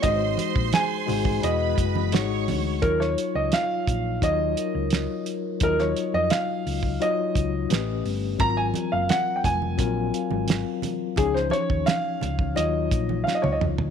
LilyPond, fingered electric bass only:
\new Staff \with { instrumentName = "Fingered electric bass" } { \clef bass \time 4/4 \key ees \dorian \tempo 4 = 86 aes,,8 r16 bes,,16 r8 aes,,8 e,,8 fis,,8 aes,,8 d,8 | ees,8 r16 des,16 r8 bes,,8 ees,8 r16 des,8 r8. | ees,8 r16 f,16 r8 des,8 r8 des,8 a,,8 g,,8 | aes,,8 r16 ges,,16 r8 f,,8 bes,,8 r16 aes,,8 r8. |
des,8 r16 ees,16 r8 des,8 ees,8 bes,,8 r16 des,16 des,16 d,16 | }